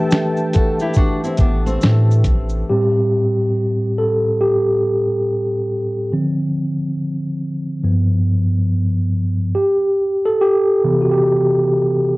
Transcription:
Already playing: tine electric piano E3 A3 D4 G4 B4, analog synth pad A4 E5 G5 A5
0.11 finger snap, snare, shaker
0.37 shaker
0.53 nylon-string guitar F#4 A4, kick, closed hi-hat, shaker
0.79 nylon-string guitar E4 G4, shaker
0.94 nylon-string guitar D4 F#4, kick, shaker
1.24 nylon-string guitar C4 E4, shaker
1.37 sub bass A1, nylon-string guitar B3 D4, kick, closed hi-hat, shaker
1.66 nylon-string guitar A3 C4, shaker
1.81 sub bass A2, finger snap, snare, shaker
2.11 shaker
2.24 sub bass A1, kick, closed hi-hat, shaker
2.49 shaker
2.69 tine electric piano A2 G3 C4 G4
3.98 tine electric piano A4
4.41 tine electric piano G4
6.12 tine electric piano D3 F3 C4
7.84 tine electric piano G2 F3 B3
9.55 tine electric piano G4
10.25 tine electric piano A4
10.41 tine electric piano G4
10.84 tine electric piano C3 E3 B3
11.02 tine electric piano F#4
11.11 tine electric piano G4

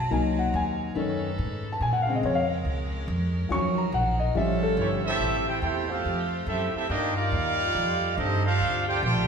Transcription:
Already playing: saxophone section F#3, grand piano A5
0.10 upright bass C2, grand piano F#3 A#3 D#4 G#5, saxophone section C4 D#4 A#4
0.39 grand piano F#5
0.54 upright bass D#2, grand piano G#5
0.95 upright bass F#2, grand piano D#3 A3 C#4, saxophone section C#4 A4 B4
1.39 upright bass G#2
1.72 grand piano A5
1.81 upright bass A#2, saxophone section G#3 C4 A#4, grand piano G#5
1.93 grand piano F#5
2.02 grand piano F5
2.07 grand piano C#3 G#3 C4
2.15 grand piano D#5
2.23 upright bass F2, grand piano C#5
2.35 grand piano F5
2.65 upright bass C#2
3.08 upright bass F2
3.49 upright bass D#2, grand piano F3 F#3 C#4 C#6, saxophone section F#3 D#4
3.78 grand piano A#5
3.92 upright bass A#1, grand piano F#5
4.20 grand piano D#5
4.35 upright bass A1, grand piano F3 G3 C#4 E5, saxophone section G3 C#4 F4 A4
4.63 grand piano A4
4.77 upright bass G1, trombone section E3 G3 C#4, trumpet section A3 E4 G4 C#5
5.05 trombone section A3 C4 E4, trumpet section C4 G4 A4 E5
5.19 upright bass A1, saxophone section A3 C4 F4 G4
5.47 trombone section C4 E4 G4, trumpet section E4 A4 C5 G5
5.61 upright bass E2, trombone section C4 E4 G4, trumpet section E4 A4 C5 G5
5.90 trombone section A3 C4 F4, trumpet section C4 G4 A4 F5
6.05 upright bass F2
6.46 upright bass F#2, trombone section A3 C4 E4, trumpet section C4 G4 A4 E5
6.74 trombone section A3 C4 E4, trumpet section C4 G4 A4 E5, muted upright bass stroke
6.88 upright bass G2, saxophone section D#3 A#3 F4 D5, trombone section G3 A#3 D#4, trumpet section A#3 D4 G4 D#5
7.15 trombone section G3 A#3 F4, trumpet section D#4 A#4 D5 F5
7.32 upright bass D#2
7.74 upright bass F2, saxophone section F3 A3 D#4 G4
8.17 upright bass G2, trombone section A3 C4 D#4, trumpet section C4 G4 A4 D#5
8.45 trombone section A3 D4 F4, trumpet section D4 A4 C5 F5
8.60 upright bass D2, saxophone section D3 C4
8.88 trombone section A3 D4 G4, trumpet section F4 C5 D5 G5
9.03 upright bass A#1, trombone section A3 D4 G4, trumpet section F4 C5 D5 G5

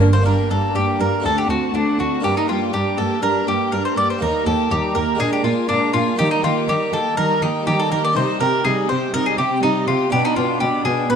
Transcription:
Already playing: double bass section G1, harpsichord G2, cello section G2
0.00 viola section A#3, violin section D4, harpsichord A#4
0.13 harpsichord A#3, mandolin C5
0.21 harpsichord A#3 D4, violin section D4
0.26 cello section G2, harpsichord G2, viola section A#3, mandolin A#4, violin section G5
0.50 harpsichord G2, cello section G2, viola section G3, violin section A#3 A#5, mandolin A4
0.75 harpsichord G2, cello section G2, viola section A#3, violin section D4 G5, mandolin G4
1.00 harpsichord G2, cello section G2, viola section G3, violin section A#3 A#5, mandolin A#4
1.20 harpsichord A3 C4 D4
1.24 harpsichord D2, cello section D2, viola section A3, violin section D4 F#5, mandolin A4
1.38 mandolin G4
1.49 cello section D2, harpsichord D2, viola section C4, violin section F#4 A5, mandolin F#4
1.74 harpsichord D2, cello section D2, viola section A3, violin section D4 F#5, mandolin D4
1.99 cello section D2, harpsichord D2, viola section C4, violin section F#4 A5, mandolin F#4
2.20 harpsichord G2 A#3 D4, cello section G2, violin section D4 A#5, mandolin G4
2.25 viola section G3
2.37 mandolin D#4
2.48 harpsichord G2, cello section G2, viola section A#3, mandolin F4, violin section G4 G5
2.73 harpsichord G2, cello section G2, viola section G3, violin section D4 A#5, mandolin G4
2.98 harpsichord G2, cello section G2, viola section A#3, violin section G4 G5, mandolin A4
3.22 harpsichord G2, cello section G2, viola section G3, violin section D4 A#5, mandolin A#4
3.47 harpsichord G2, cello section G2, viola section A#3, violin section G4 G5, mandolin G4
3.72 harpsichord G2, cello section G2, viola section G3, violin section D4 A#5, mandolin A#4
3.85 mandolin C5
3.96 harpsichord G2, cello section G2, viola section A#3, violin section G4 G5, mandolin D5
4.10 mandolin C5
4.19 harpsichord D#2 A#3 D#4, cello section D#2, viola section G3, violin section D#4 A#5, mandolin A#4
4.46 harpsichord D#2, cello section D#2, viola section A#3, violin section G4 G5, mandolin A4
4.71 harpsichord D#2, cello section D#2, viola section G3, violin section D#4 A#5, mandolin G4
4.95 harpsichord D#2, cello section D#2, viola section A#3, violin section G4 G5, mandolin A#4
5.15 harpsichord G#3 A#3 D4
5.20 harpsichord A#2, cello section A#2, viola section G#3, violin section D4 A#5, mandolin G#4
5.33 mandolin G4
5.44 cello section A#2, harpsichord A#2, viola section A#3, mandolin F4, violin section F4 G#5
5.69 harpsichord A#2, cello section A#2, viola section G#3, mandolin D4, violin section D4 A#5
5.93 harpsichord A#2, cello section A#2, viola section A#3, mandolin F4, violin section F4 G#5
6.16 harpsichord D#3 A#3 D#4, cello section D#3, viola section G3, violin section D#4 A#5, mandolin G4
6.31 mandolin D#4
6.43 harpsichord D#3, cello section D#3, viola section A#3, mandolin F4, violin section G4 G5
6.68 harpsichord D#3, cello section D#3, viola section G3, violin section D#4 A#5, mandolin G4
6.93 harpsichord D#3, cello section D#3, viola section A#3, violin section G4 G5, mandolin A4
7.17 harpsichord D#3, cello section D#3, viola section G3, violin section D#4 A#5, mandolin A#4
7.42 harpsichord D#3, cello section D#3, viola section A#3, mandolin D#4, violin section G4 G5
7.67 cello section D#3, harpsichord D#3, viola section G3, violin section D#4 A#5, mandolin G4
7.80 mandolin A4
7.92 cello section D#3, harpsichord D#3, viola section A#3, violin section G4 G5, mandolin A#4
8.04 mandolin D5
8.13 cello section C3, harpsichord C3 C4 D#4, viola section G3, violin section D#4 D#5, mandolin C5
8.40 harpsichord C3, cello section C3, viola section C4, violin section G4 G5, mandolin A#4
8.65 harpsichord C3, cello section C3, viola section G3, violin section D#4 D#5, mandolin G#4
8.89 harpsichord C3, cello section C3, viola section C4, violin section G4 G5, mandolin C5
9.14 cello section C3, harpsichord C3, viola section G3, violin section D#4 D#5, mandolin A#4
9.26 mandolin G#4
9.38 cello section C3, harpsichord C3, viola section C4, mandolin G4, violin section G4 G5
9.62 cello section C3, harpsichord C3, viola section G3, mandolin D#4, violin section D#4 D#5
9.88 cello section C3, harpsichord C3, viola section C4, mandolin F4, violin section G4 G5
10.10 cello section B2, harpsichord B2 D4, viola section B3, violin section D4 B5, mandolin G4
10.25 mandolin D#4
10.36 harpsichord B2, cello section B2, violin section B3 G5, viola section D4, mandolin F4
10.60 harpsichord B2, cello section B2, viola section B3, violin section D4 B5, mandolin G4
10.85 harpsichord B2, cello section B2, violin section B3 G5, viola section D4, mandolin G#4
11.10 harpsichord B2, cello section B2, viola section B3, violin section D4 B5, mandolin B4

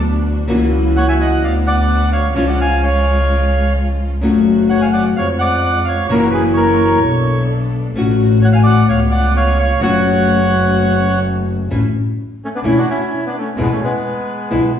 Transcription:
Already playing: double bass D2, string section B3 D4 F#4
0.47 double bass C#2, nylon-string guitar C#3 E3 A#3 C#4 F#4, string section A#3 E4 F#4
0.96 bandoneon C#5 F#5
1.08 bandoneon E5 G#5
1.21 bandoneon D#5 F#5
1.41 double bass D2, string section B3 D4 F#4, bandoneon D5 F5
1.67 bandoneon D5 F#5
2.12 bandoneon C#5 F5
2.33 double bass C#2, nylon-string guitar C#3 F3 G#3 C#4, string section G#3 C#4 F4, bandoneon C#5 F5
2.38 nylon-string guitar F4
2.48 bandoneon D5 F#5
2.61 bandoneon F5 G#5
2.83 bandoneon C#5 F5
4.21 double bass F#1, nylon-string guitar C#3 F#3 A3 C#4 F#4, string section A3 C#4 F#4
4.69 bandoneon C#5 F#5
4.81 bandoneon F5 G#5
4.92 bandoneon D5 F#5
5.15 double bass F2, string section C#3 F3 G#3, bandoneon C#5 F5
5.39 bandoneon D5 F#5
5.84 bandoneon C#5 F5
6.08 double bass F#1, nylon-string guitar C#3 E3 A#3 C#4, string section A#3 E4 F#4, bandoneon A#4 C#5
6.12 nylon-string guitar F#4
6.19 bandoneon F#4 A#4
6.31 bandoneon G#4 B4
6.54 bandoneon A#4 C#5
7.01 double bass B1, string section B3 D4 A4
7.95 double bass A1, string section A3 C#4 F#4, nylon-string guitar A3 C#4 F#4
8.42 bandoneon C#5 F#5
8.53 bandoneon F5 G#5
8.64 bandoneon D5 F#5
8.87 double bass C#2, string section B3 C#4 F4, bandoneon C#5 F5
9.11 bandoneon D5 F#5
9.37 bandoneon C#5 F5
9.59 bandoneon C#5 F5
9.80 double bass F#1, nylon-string guitar C#3 F#3 A3 C#4 F#4, string section A3 C#4 F#4, bandoneon C#5 F#5
11.70 double bass A1, nylon-string guitar E3 A3 C#4 E4
12.45 bandoneon A3 C#4
12.55 bandoneon B3 D4
12.63 double bass E1, nylon-string guitar E3 A3 C#4 E4, bandoneon C#4
12.68 bandoneon E4
12.78 bandoneon D4 F#4
12.89 bandoneon C#4 E4
13.26 bandoneon B3 D4
13.38 bandoneon A3 C#4
13.56 double bass E2, nylon-string guitar B2 E3 G#3 B3 E4, bandoneon G#3
13.62 bandoneon B3
13.71 bandoneon A3 C#4
13.82 bandoneon G#3 B3
14.50 double bass B1, nylon-string guitar B2 E3 G#3 B3 E4

